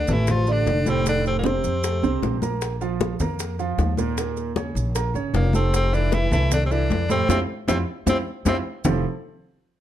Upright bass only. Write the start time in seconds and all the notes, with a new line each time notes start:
0.08 A1
0.66 F1
1.64 F2
2.03 C2
2.22 A#1
3.20 F2
3.78 D#2
4.75 A#1
5.14 G1
5.34 F1
6.31 C2
6.90 F2
7.28 F2
7.68 F2
8.06 F2
8.45 F2
8.85 F1